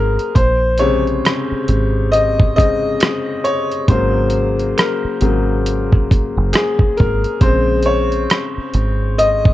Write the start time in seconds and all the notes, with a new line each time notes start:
Already playing: G#1 C#3 F#3 A#3 G#4 A#4
0.19 closed hi-hat
0.35 A#1 C5, kick, closed hi-hat
0.77 C3 C#3 G#3 C#5, closed hi-hat
1.07 closed hi-hat
1.25 finger snap, cross-stick, closed hi-hat
1.52 muted fingered electric bass stroke
1.68 G#1, closed hi-hat
2.12 D#5, closed hi-hat
2.40 kick
2.56 C#3 G#3 C4 D#5, kick, closed hi-hat
3.00 finger snap, cross-stick, closed hi-hat
3.44 C#5, closed hi-hat
3.72 closed hi-hat
3.88 G#1 C#3 F#3 A#3 C5, kick, closed hi-hat
4.30 closed hi-hat
4.59 closed hi-hat
4.78 A#4, finger snap, cross-stick, closed hi-hat
5.04 muted fingered electric bass stroke
5.21 G#1 C#3 F#3 A#3, closed hi-hat
5.66 closed hi-hat
5.92 kick
6.11 kick, closed hi-hat
6.37 F#1
6.53 G#4, finger snap, cross-stick, closed hi-hat
6.79 kick
6.97 G#1 A#4, kick, closed hi-hat
7.24 closed hi-hat
7.41 A#1 C#3 G#3 C4 C5, kick, closed hi-hat
7.83 C#5, closed hi-hat
8.12 closed hi-hat
8.30 finger snap, cross-stick, closed hi-hat
8.58 muted fingered electric bass stroke
8.74 G#1, closed hi-hat
9.18 D#5, closed hi-hat
9.45 kick